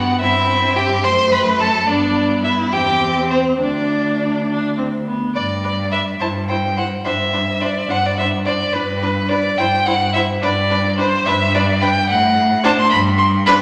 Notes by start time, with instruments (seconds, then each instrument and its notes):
Already playing: cello G2, viola B3, violin F#5
0.20 cello G2, viola C4, violin E4 E5
0.76 violin G4 G5
1.04 cello F#2, viola A3, violin C5 C6
1.32 violin B4 B5
1.60 violin A4 A5
1.87 cello G2, viola B3, violin D4 D5
2.43 violin E4 E5
2.72 cello E2, viola C4, violin G4 G5
3.30 violin C4 C5
3.60 cello D2, viola D4, violin D4 D5
4.49 viola D4
4.78 viola C4
5.06 viola B3
5.35 cello G2, viola B4, violin D5
5.64 viola B4, violin D5
5.91 viola B4, violin D5 E5
6.20 cello G2, viola E4, violin C5 A5
6.49 viola E4, violin C5 G5
6.77 viola E4, violin C5 F#5
7.05 cello G2, viola D4, violin C5 E5
7.33 viola D4, violin C5
7.60 viola D4, violin C5 D5
7.89 cello G2, viola D4, violin C5 F#5
8.06 violin D5
8.17 viola D4, violin C5 E5
8.45 viola D4, violin C5 D5
8.73 cello G2, viola D4, violin B4
9.02 viola D4, violin B4
9.29 viola D4, violin B4 D5
9.58 cello G2, viola E4, violin C5 G5
9.86 viola E4, violin C5 F#5
10.13 viola E4, violin C5 E5
10.42 cello G2, viola D4, violin B4 D5
10.70 viola D4, violin B4
10.98 viola D4, violin B4 C5
11.26 cello G2, viola D4, violin B4 E5
11.54 viola D4, violin B4 D5
11.81 viola D4, violin B4 G5
12.09 cello A2, violin F#5
12.63 viola D4, violin C5 A5
12.79 violin C6
12.90 cello G2, violin B5
13.18 violin C6
13.46 viola D4, violin B4 B5